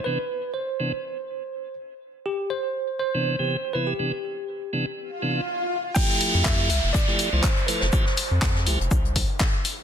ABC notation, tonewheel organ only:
X:1
M:4/4
L:1/16
Q:"Swing 16ths" 1/4=122
K:Flyd
V:1 name="Tonewheel organ"
[C,E,B,D] z4 z [C,E,B,D] z8 z | z8 z [C,E,B,D]2 [C,E,B,G] z2 [C,E,B,E] z | [C,E,B,D] z4 z [C,E,B,D] z3 [C,E,B,D] z4 z | [F,A,EG]6 z3 [F,A,EG]2 [F,A,Ec] z2 [F,A,EA] z |
[F,A,EG] z4 z [F,A,EG] z8 z |]